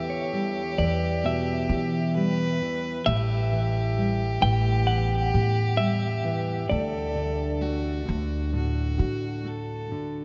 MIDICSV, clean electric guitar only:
0, 0, Header, 1, 2, 480
1, 0, Start_track
1, 0, Key_signature, 2, "major"
1, 0, Tempo, 913242
1, 1608, Time_signature, 4, 2, 24, 8
1, 5386, End_track
2, 0, Start_track
2, 0, Title_t, "Clean electric guitar"
2, 0, Program_c, 0, 27
2, 52, Note_on_c, 0, 73, 87
2, 410, Note_off_c, 0, 73, 0
2, 412, Note_on_c, 0, 74, 77
2, 657, Note_off_c, 0, 74, 0
2, 661, Note_on_c, 0, 76, 81
2, 1354, Note_off_c, 0, 76, 0
2, 1609, Note_on_c, 0, 76, 97
2, 2322, Note_off_c, 0, 76, 0
2, 2324, Note_on_c, 0, 79, 96
2, 2549, Note_off_c, 0, 79, 0
2, 2559, Note_on_c, 0, 78, 103
2, 3032, Note_off_c, 0, 78, 0
2, 3034, Note_on_c, 0, 76, 92
2, 3519, Note_on_c, 0, 74, 79
2, 3536, Note_off_c, 0, 76, 0
2, 4943, Note_off_c, 0, 74, 0
2, 5386, End_track
0, 0, End_of_file